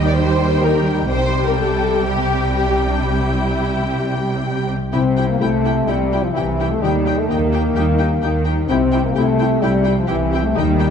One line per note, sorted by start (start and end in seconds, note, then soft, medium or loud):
0.00 1.09 D#2 medium
0.00 1.09 D#3 medium
0.00 1.14 D#3 medium
0.00 0.19 G3 soft
0.00 1.08 G3 medium
0.00 0.34 D#4 soft
0.00 0.50 G4 soft
0.00 1.09 G4 medium
0.00 1.09 G5 medium
0.08 0.19 D5 medium
0.18 0.81 G3 soft
0.18 0.64 C5 medium
0.35 0.65 D#4 soft
0.51 1.42 G4 soft
0.64 0.96 D#4 soft
0.64 0.88 A#4 medium
0.82 1.27 G3 soft
0.98 1.15 D#4 soft
1.10 4.69 C2 medium
1.10 3.00 C3 medium
1.10 4.69 C3 soft
1.10 4.69 G3 medium
1.10 4.69 G4 medium
1.10 1.44 C5 medium
1.10 4.69 G5 soft
1.28 1.58 G3 soft
1.43 2.36 G4 soft
1.43 1.59 A#4 medium
1.59 1.89 G3 soft
1.59 2.05 A4 medium
1.74 2.05 C4 soft
1.90 2.21 G3 soft
2.05 2.69 C4 soft
2.05 2.52 G4 medium
2.22 2.53 G3 soft
2.38 3.33 G4 soft
2.53 2.84 G3 soft
2.53 2.88 G4 soft
2.70 3.17 C4 soft
2.86 3.49 G3 soft
2.86 3.01 D4 soft
3.01 4.93 C3 soft
3.01 4.46 E4 soft
3.18 3.66 C4 soft
3.34 4.29 G4 soft
3.50 3.81 G3 soft
3.67 3.97 C4 soft
3.82 4.12 G3 soft
3.98 4.61 C4 soft
4.13 4.46 G3 soft
4.30 5.40 G4 soft
4.47 4.77 G3 soft
4.63 5.72 C4 soft
4.78 5.09 G3 soft
4.93 5.35 C2 soft
4.93 5.36 C3 soft
4.93 6.84 C3 soft
4.93 5.26 C4 medium
4.93 5.01 E4 soft
4.93 5.01 G4 soft
4.93 5.01 G5 soft
5.10 5.56 G3 soft
5.16 5.25 E4 soft
5.16 5.25 G4 soft
5.16 5.24 G5 soft
5.26 5.41 A#3 medium
5.26 6.18 E4 soft
5.40 5.82 C2 soft
5.40 5.83 C3 soft
5.40 5.86 A3 medium
5.40 5.48 E4 soft
5.40 5.49 G4 soft
5.40 6.34 G4 soft
5.40 5.50 G5 soft
5.57 5.87 G3 soft
5.64 5.72 E4 soft
5.64 5.72 G4 soft
5.64 5.73 G5 soft
5.73 6.03 C4 soft
5.87 6.29 C2 medium
5.87 6.29 C3 soft
5.87 6.50 G3 soft
5.87 6.23 G3 medium
5.87 5.95 E4 soft
5.87 5.96 G4 soft
5.87 5.97 G5 soft
6.04 6.65 C4 soft
6.12 6.20 E4 soft
6.12 6.20 G4 soft
6.12 6.21 G5 soft
6.19 6.35 F3 soft
6.19 6.84 E4 soft
6.33 6.76 C2 soft
6.33 6.76 C3 soft
6.33 6.69 E3 medium
6.33 6.43 E4 soft
6.33 7.12 G4 soft
6.33 6.43 G4 soft
6.33 6.45 G5 soft
6.51 7.43 G3 soft
6.59 6.68 E4 soft
6.59 6.67 G4 soft
6.59 6.68 G5 soft
6.66 6.82 A3 medium
6.66 6.84 C4 soft
6.81 7.23 D#2 soft
6.81 7.23 D#3 soft
6.81 8.71 D#3 soft
6.81 7.17 G3 medium
6.81 6.92 D#4 soft
6.81 6.89 G4 soft
6.81 6.92 G5 soft
6.98 7.28 D#4 soft
7.06 7.14 D#4 soft
7.06 7.14 G4 soft
7.06 7.15 G5 soft
7.14 8.07 G4 soft
7.18 7.29 A3 medium
7.28 7.70 D#2 soft
7.28 7.70 D#3 soft
7.28 8.44 A#3 medium
7.28 7.37 D#4 soft
7.28 7.59 D#4 soft
7.28 7.36 G4 soft
7.28 7.39 G5 soft
7.45 7.76 G3 soft
7.52 7.61 D#4 soft
7.52 7.60 G4 soft
7.52 7.61 G5 soft
7.60 7.90 D#4 soft
7.75 8.17 D#2 medium
7.75 8.17 D#3 soft
7.75 8.38 G3 soft
7.75 7.86 D#4 soft
7.75 7.83 G4 soft
7.75 7.84 G5 soft
7.92 8.22 D#4 soft
7.98 8.08 D#4 soft
7.98 8.07 G4 soft
7.98 8.06 G5 soft
8.08 9.15 G4 soft
8.22 8.64 D#2 soft
8.22 8.64 D#3 soft
8.22 8.53 D#4 soft
8.22 8.33 D#4 soft
8.22 8.30 G4 soft
8.22 8.30 G5 soft
8.39 8.85 G3 soft
8.44 8.55 D#4 soft
8.44 8.53 G4 soft
8.44 8.52 G5 soft
8.55 8.72 D#4 soft
8.68 9.11 C2 medium
8.68 9.10 C3 medium
8.68 10.58 C3 soft
8.68 9.02 C4 medium
8.68 8.77 E4 soft
8.68 8.78 G4 soft
8.68 8.76 G5 soft
8.86 9.31 G3 soft
8.92 9.02 E4 soft
8.92 9.00 G4 soft
8.92 9.00 G5 soft
9.01 9.16 A#3 medium
9.01 9.93 E4 soft
9.15 9.57 C2 soft
9.15 9.58 C3 soft
9.15 9.61 A3 medium
9.15 9.25 E4 soft
9.15 9.23 G4 soft
9.15 10.09 G4 soft
9.15 9.23 G5 soft
9.32 9.62 G3 soft
9.39 9.48 E4 soft
9.39 9.48 G4 soft
9.39 9.47 G5 soft
9.48 9.78 C4 soft
9.61 10.04 C2 medium
9.61 10.04 C3 medium
9.61 9.97 G3 medium
9.61 10.24 G3 soft
9.61 9.71 E4 soft
9.61 9.69 G4 soft
9.61 9.71 G5 soft
9.79 10.40 C4 soft
9.84 9.93 E4 soft
9.84 9.93 G4 soft
9.84 9.92 G5 soft
9.94 10.09 F3 medium
9.94 10.58 E4 soft
10.07 10.50 C2 soft
10.07 10.51 C3 soft
10.07 10.43 E3 medium
10.07 10.17 E4 soft
10.07 10.16 G4 soft
10.07 10.86 G4 soft
10.07 10.15 G5 soft
10.25 10.90 G3 soft
10.31 10.41 E4 soft
10.31 10.39 G4 soft
10.31 10.42 G5 soft
10.41 10.56 A3 medium
10.41 10.58 C4 soft
10.55 10.90 D#2 medium
10.55 10.90 D#3 soft
10.55 10.90 G3 medium
10.55 10.64 D#4 soft
10.55 10.63 G4 medium
10.55 10.66 G5 soft
10.73 10.90 D#4 soft
10.79 10.87 D#4 soft
10.79 10.87 G4 soft
10.79 10.87 G5 soft